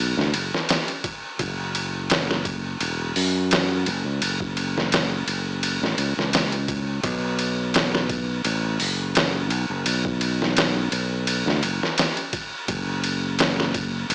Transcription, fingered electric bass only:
0.00 0.14 B1 medium
0.17 0.31 D2 medium
0.34 0.50 F#1 medium
1.39 2.77 F#1 loud
2.81 3.12 E1 medium
3.16 3.88 F#2 medium
3.86 4.03 F#1 medium
4.05 4.19 C#2 medium
4.21 5.24 F#1 medium
5.27 5.78 F#1 medium
5.82 5.96 A1 medium
5.98 6.15 C#2 loud
6.17 7.01 C#2 medium
7.04 8.42 B1 medium
8.45 8.76 A1 medium
8.80 9.51 F#1 medium
9.51 9.68 B1 medium
9.70 9.84 F#1 medium
9.86 10.89 B1 medium
10.92 11.43 B1 medium
11.46 11.61 D2 medium
11.63 11.79 F#1 medium
12.68 14.07 F#1 medium
14.10 14.15 E1 medium

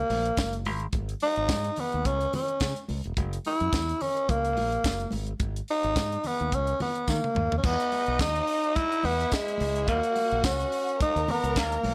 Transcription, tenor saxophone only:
0.00 0.62 A#3 medium
1.22 1.81 D#4 loud
1.80 2.08 B3 medium
2.06 2.33 C#4 loud
2.35 2.86 C#4 medium
3.46 4.03 E4 medium
4.01 4.31 C#4 loud
4.30 5.13 A#3 medium
5.70 6.28 D#4 loud
6.27 6.56 B3 medium
6.54 6.81 C#4 medium
6.82 7.11 B3 medium
7.09 7.57 A#3 loud
7.58 7.66 C#4 medium
7.65 8.22 B3 loud
8.21 8.77 D#4 loud
8.76 9.07 E4 loud
9.05 9.34 B3 loud
9.33 9.90 G#3 medium
9.88 10.46 A#3 loud
10.45 11.00 C#4 medium
11.02 11.32 D#4 loud
11.31 11.60 B3 medium
11.59 11.94 A#3 medium

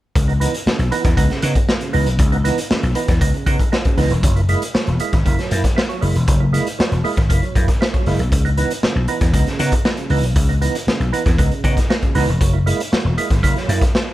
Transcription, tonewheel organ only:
0.15 0.31 C#3 medium
0.28 0.33 B3 soft
0.28 0.33 D#4 soft
0.40 0.56 E3 medium
0.40 0.56 B3 medium
0.40 0.56 D#4 medium
0.67 0.82 C#3 medium
0.91 1.07 E3 medium
0.91 1.03 B3 medium
0.91 1.03 D#4 medium
1.04 1.10 B3 soft
1.04 1.10 D#4 soft
1.17 1.32 B3 medium
1.17 1.33 D#4 medium
1.30 1.45 C#3 medium
1.42 1.58 B3 medium
1.42 1.58 D#4 medium
1.69 1.74 B3 soft
1.69 1.74 D#4 soft
1.81 1.96 C#3 medium
1.93 2.09 E3 medium
1.93 2.09 B3 medium
1.93 2.09 D#4 medium
2.19 2.35 C#3 medium
2.32 2.37 B3 soft
2.32 2.37 D#4 soft
2.44 2.60 E3 medium
2.44 2.60 B3 medium
2.44 2.60 D#4 medium
2.70 2.85 C#3 medium
2.95 3.11 E3 medium
2.95 3.07 B3 medium
2.95 3.07 D#4 medium
3.09 3.14 B3 soft
3.09 3.14 D#4 soft
3.21 3.36 B3 medium
3.21 3.37 D#4 medium
3.34 3.49 C#3 medium
3.46 3.62 B3 medium
3.46 3.62 D#4 medium
3.72 3.77 B3 soft
3.72 3.77 D#4 soft
3.85 4.00 C#3 medium
3.97 4.13 E3 medium
3.97 4.13 B3 medium
3.97 4.13 D#4 medium
4.24 4.39 F#3 medium
4.36 4.41 A#3 soft
4.36 4.41 E4 soft
4.49 4.64 G#3 medium
4.49 4.64 A#3 medium
4.49 4.64 E4 medium
4.75 4.90 F#3 medium
5.00 5.15 G#3 medium
5.00 5.12 A#3 medium
5.00 5.12 E4 medium
5.13 5.18 A#3 soft
5.13 5.18 E4 soft
5.25 5.41 A#3 medium
5.25 5.41 E4 medium
5.38 5.54 F#3 medium
5.51 5.66 A#3 medium
5.51 5.66 E4 medium
5.76 5.82 A#3 soft
5.76 5.82 E4 soft
5.89 6.04 F#3 medium
6.01 6.17 G#3 medium
6.01 6.17 A#3 medium
6.01 6.17 E4 medium
6.28 6.43 F#3 medium
6.40 6.45 A#3 soft
6.40 6.45 E4 soft
6.53 6.68 G#3 medium
6.53 6.68 A#3 medium
6.53 6.68 E4 medium
6.79 6.94 F#3 medium
7.04 7.19 G#3 medium
7.04 7.16 A#3 medium
7.04 7.16 E4 medium
7.17 7.22 A#3 soft
7.17 7.22 E4 soft
7.29 7.45 A#3 medium
7.29 7.45 E4 medium
7.42 7.58 F#3 medium
7.55 7.70 A#3 medium
7.55 7.71 E4 medium
7.81 7.86 A#3 soft
7.81 7.86 E4 soft
7.94 8.09 F#3 medium
8.06 8.22 G#3 medium
8.06 8.22 A#3 medium
8.06 8.22 E4 medium
8.32 8.47 C#3 medium
8.45 8.50 B3 soft
8.45 8.50 D#4 soft
8.58 8.73 E3 medium
8.58 8.73 B3 medium
8.58 8.73 D#4 medium
8.83 8.98 C#3 soft
9.08 9.24 E3 medium
9.08 9.20 B3 medium
9.08 9.20 D#4 medium
9.21 9.27 B3 soft
9.21 9.27 D#4 soft
9.33 9.49 B3 medium
9.33 9.49 D#4 medium
9.47 9.62 C#3 medium
9.59 9.75 B3 medium
9.59 9.75 D#4 medium
9.85 9.90 B3 soft
9.85 9.90 D#4 soft
9.98 10.13 C#3 medium
10.10 10.26 E3 medium
10.10 10.26 B3 medium
10.10 10.26 D#4 medium
10.36 10.51 C#3 medium
10.49 10.54 B3 soft
10.49 10.54 D#4 soft
10.61 10.77 E3 medium
10.61 10.77 B3 medium
10.61 10.77 D#4 medium
10.87 11.03 C#3 medium
11.13 11.28 E3 medium
11.13 11.24 B3 medium
11.13 11.24 D#4 medium
11.25 11.31 B3 soft
11.25 11.31 D#4 soft
11.38 11.54 B3 medium
11.38 11.54 D#4 medium
11.51 11.67 C#3 medium
11.64 11.79 B3 medium
11.64 11.79 D#4 medium
11.90 11.95 B3 soft
11.90 11.95 D#4 soft
12.03 12.18 C#3 medium
12.15 12.30 E3 medium
12.15 12.30 B3 medium
12.15 12.31 D#4 medium
12.40 12.56 F#3 medium
12.53 12.59 A#3 soft
12.53 12.59 E4 soft
12.66 12.81 G#3 medium
12.66 12.82 A#3 medium
12.66 12.82 E4 medium
12.92 13.07 F#3 medium
13.17 13.33 G#3 medium
13.17 13.30 A#3 medium
13.17 13.29 E4 medium
13.31 13.36 A#3 soft
13.31 13.36 E4 soft
13.43 13.58 A#3 medium
13.43 13.59 E4 medium
13.56 13.71 F#3 medium
13.69 13.84 A#3 medium
13.69 13.84 E4 medium

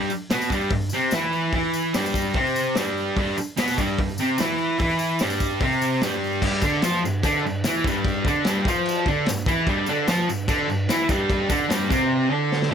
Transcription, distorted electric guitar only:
0.10 muted distorted electric guitar stroke medium
0.31 0.50 B2 medium
0.31 0.51 B3 medium
0.51 0.70 G2 medium
0.51 0.71 G3 loud
0.72 0.88 G2 medium
0.93 1.12 C3 medium
0.93 1.13 C4 loud
1.13 1.53 E3 medium
1.13 1.53 E4 medium
1.54 1.94 E3 medium
1.54 1.94 E4 medium
1.94 2.34 G2 medium
1.94 2.35 G3 loud
2.35 2.75 C3 medium
2.35 2.75 C4 medium
2.76 3.16 G2 medium
2.76 3.16 G3 loud
3.17 3.36 G2 medium
3.17 3.37 G3 loud
3.38 muted distorted electric guitar stroke medium
3.57 3.77 B2 medium
3.57 3.77 B3 loud
3.78 3.97 G2 medium
3.78 3.98 G3 loud
3.99 4.15 G2 medium
4.19 4.38 C3 medium
4.19 4.39 C4 medium
4.39 4.77 E3 medium
4.39 4.78 E4 loud
4.78 5.19 E3 medium
4.78 5.19 E4 loud
5.20 5.60 G2 medium
5.20 5.61 G3 loud
5.60 6.00 C3 loud
5.60 6.01 C4 medium
6.02 6.41 G2 medium
6.02 6.42 G3 loud
6.42 6.62 G2 medium
6.42 6.62 G3 medium
6.63 6.82 D3 medium
6.63 6.82 D4 medium
6.83 7.02 F3 medium
6.83 7.03 F4 loud
7.04 7.19 G2 medium
7.23 7.43 D3 medium
7.23 7.44 D4 loud
7.45 7.61 G2 medium
7.64 7.84 E3 medium
7.64 7.84 E4 loud
7.85 8.24 G2 loud
7.85 8.25 G3 medium
8.25 8.45 D3 medium
8.25 8.45 D4 loud
8.45 8.65 G2 medium
8.45 8.65 G3 loud
8.66 9.06 F3 medium
8.66 9.07 F4 loud
9.07 9.26 D3 medium
9.07 9.27 D4 loud
9.27 9.43 G2 medium
9.47 9.66 E3 medium
9.47 9.67 E4 loud
9.67 9.87 G2 medium
9.67 9.87 G3 loud
9.88 10.07 D3 medium
9.88 10.08 D4 loud
10.07 10.27 F3 medium
10.07 10.28 F4 loud
10.27 10.44 G2 medium
10.47 10.67 D3 medium
10.47 10.68 D4 loud
10.68 10.84 G2 medium
10.88 11.08 E3 medium
10.88 11.09 E4 loud
11.08 11.49 G2 medium
11.08 11.49 G3 medium
11.49 11.69 D3 loud
11.49 11.69 D4 loud
11.69 11.89 G2 medium
11.69 11.89 G3 loud
11.88 12.31 C3 medium
11.88 12.32 C4 loud
12.31 12.70 D3 loud
12.31 12.71 D4 loud
12.70 12.74 A2 medium
12.70 12.74 A3 loud

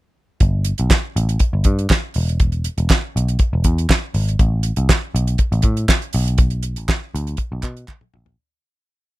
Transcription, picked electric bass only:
0.41 0.71 G1 loud
0.80 0.89 B1 medium
1.16 1.36 A1 medium
1.53 1.63 G1 medium
1.66 1.86 G2 medium
2.16 2.67 E1 medium
2.78 2.88 E1 medium
3.16 3.36 B1 medium
3.53 3.63 E1 medium
3.65 3.85 E2 medium
4.14 4.35 G#1 medium
4.40 4.70 A1 medium
4.77 4.87 C2 medium
5.15 5.35 B1 medium
5.52 5.62 A1 medium
5.64 5.85 A2 medium
6.14 6.77 B1 medium
6.77 6.87 A1 medium
7.15 7.35 D2 medium
7.52 7.62 B1 medium
7.64 7.84 B2 medium
8.15 8.35 A#1 medium

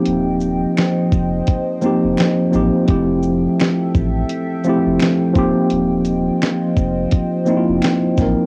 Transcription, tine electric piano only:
0.00 0.93 F3 medium
0.00 0.94 A#3 medium
0.00 0.95 C4 medium
0.00 0.95 D#4 medium
0.00 0.96 G4 loud
1.81 2.44 F3 medium
1.81 2.45 A#3 medium
1.81 2.45 C4 medium
1.81 2.46 D#4 medium
1.86 2.46 G4 medium
2.51 2.83 F3 medium
2.51 2.84 A#3 medium
2.51 2.84 C4 medium
2.51 2.85 D#4 medium
2.56 2.85 G4 medium
2.86 4.11 F3 medium
2.86 4.11 A3 medium
2.86 4.12 C4 medium
2.86 4.12 E4 medium
2.90 4.13 G4 medium
4.65 5.27 F3 loud
4.65 5.28 A3 medium
4.65 5.28 C4 medium
4.65 5.29 E4 medium
4.69 5.29 G4 loud
5.33 6.58 F3 loud
5.33 6.59 A#3 loud
5.33 6.59 C4 medium
5.33 6.60 D#4 medium
5.38 6.61 G4 loud
7.46 8.08 F3 medium
7.46 8.09 A#3 medium
7.46 8.10 C4 medium
7.46 8.10 D#4 medium
7.50 7.56 E4 medium
7.57 8.14 F4 loud
8.18 8.46 F3 medium
8.18 8.46 A#3 medium
8.18 8.46 C4 medium
8.18 8.46 D#4 medium
8.22 8.46 A#4 medium

